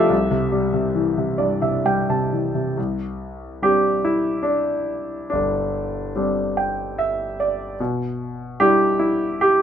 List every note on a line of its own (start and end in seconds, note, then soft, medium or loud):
0.00 0.13 C3 medium
0.00 0.14 F3 medium
0.00 0.14 A3 medium
0.00 0.13 C4 medium
0.00 1.83 G4 medium
0.00 1.83 A4 medium
0.00 0.14 D5 medium
0.00 1.60 E5 medium
0.00 0.14 F5 loud
0.00 0.14 A5 medium
0.10 2.73 C2 medium
0.31 0.72 C3 soft
0.52 1.84 G3 soft
0.74 1.16 C3 soft
0.95 2.31 E3 soft
1.18 1.60 C3 soft
1.38 2.73 G2 soft
1.38 1.60 D5 soft
1.62 2.08 C3 soft
1.62 1.84 E5 soft
1.85 2.74 G3 soft
1.85 2.08 G5 soft
2.10 2.53 C3 soft
2.10 2.74 A5 soft
2.32 2.76 E3 soft
2.55 2.77 C3 soft
2.77 5.28 C2 soft
3.62 6.11 G3 soft
3.62 6.11 C4 soft
3.62 4.41 D4 soft
3.62 4.07 G4 medium
4.05 4.49 E4 medium
4.43 5.28 D4 medium
5.30 7.75 G1 medium
5.30 6.11 D4 medium
6.16 7.75 G3 soft
6.16 7.75 C4 soft
6.16 7.75 D4 soft
6.57 6.95 G5 soft
6.99 7.36 E5 medium
7.40 7.77 D5 medium
7.80 9.62 B2 medium
8.60 9.62 G3 soft
8.60 9.62 D4 soft
8.60 8.98 E4 medium
8.60 9.01 G4 medium
8.99 9.41 E4 medium
9.41 9.62 G4 medium